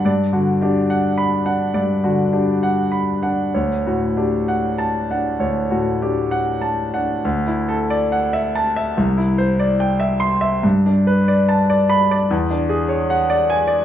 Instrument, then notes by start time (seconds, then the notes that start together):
grand piano
0.05 G2 D5
0.33 D3 F#4
0.62 D4 G4
0.90 F#5
1.18 B5
1.46 D4 F#5
1.74 G2 D5
2.04 D3 F#4
2.33 D4 G4
2.63 F#5
2.92 B5
3.23 D4 F#5
3.54 D2 C#5
3.87 A2 F#4
4.17 D4 G4
4.48 F#5
4.78 A5
5.10 D4 F#5
5.40 D2 C#5
5.71 A2 F#4
6.02 D4 G4
6.31 F#5
6.61 A5
6.94 D4 F#5
7.25 D2
7.47 E4
7.69 A4
7.90 D5
8.12 F#5
8.33 E5
8.55 A5
8.76 E5
8.97 C2
9.17 E4
9.38 C5
9.60 D5
9.80 G5
10.00 E5
10.20 C6
10.41 E5
10.63 G2
10.86 D4
11.07 B4
11.28 D5
11.49 A5
11.70 D5
11.90 B5
12.11 D5
12.31 E2
12.51 D4
12.69 G#4
12.89 C#5
13.10 F#5
13.30 D5
13.50 G#5
13.67 D5